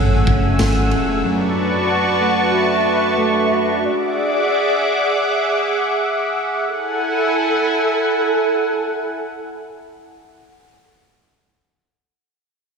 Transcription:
Already playing: analog synth bass G#1, clean electric guitar F#2 A3 C#4 G#4, analog synth pad A3 F#5 G#5 E6, soft synth lead C#5
0.27 analog synth bass F#1, clean electric guitar C#4, kick, ride
0.59 analog synth bass G#1, clean electric guitar A3, snare, ride, tambourine
0.91 analog synth bass E1, clean electric guitar G#4, ride
1.22 clean electric guitar F#2, analog synth pad F#4 B4 D5 A5 C#6
1.55 clean electric guitar D4
1.87 clean electric guitar F#4, soft synth lead F#5
2.19 clean electric guitar A3
2.51 clean electric guitar F#4, soft synth lead E5
2.84 clean electric guitar D4
3.16 clean electric guitar A3
3.50 clean electric guitar F#4
3.83 analog synth pad G#4 E5 F#5 D6, soft synth lead D5
6.65 analog synth pad E4 A4 F#5 G#5, soft synth lead A4

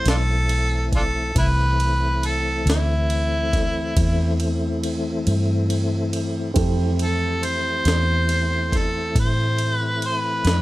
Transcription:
Already playing: tonewheel organ E3 A3 C4 E4
0.06 fingered electric bass B1, harmonica D4 F4 A4, snare, ride
0.49 ride
0.92 harmonica D4 F4 A4, kick, ride
1.34 fingered electric bass C2, tonewheel organ E3 A3 C4 E4, harmonica E4 B4, kick, ride
1.80 ride
2.23 harmonica A4, ride
2.66 fingered electric bass D2, snare, ride
2.70 harmonica E4
3.10 ride
3.53 kick, snare, ride
3.97 fingered electric bass E2, kick, ride
4.40 ride
4.84 ride
5.27 fingered electric bass G2, ride
5.70 ride
6.13 ride
6.54 fingered electric bass F2, tonewheel organ E3 C4, upright piano C4 E4 G4 A4, kick, ride
6.58 tonewheel organ A3 E4
6.99 harmonica A4, ride
7.43 harmonica C5, ride
7.85 fingered electric bass E2, snare, ride
8.29 ride
8.72 kick, snare, ride
8.77 harmonica A4
9.15 fingered electric bass A2, kick, ride
9.20 harmonica C5
9.59 ride
9.75 harmonica B4
10.02 harmonica B4, ride
10.45 fingered electric bass F2, snare, ride

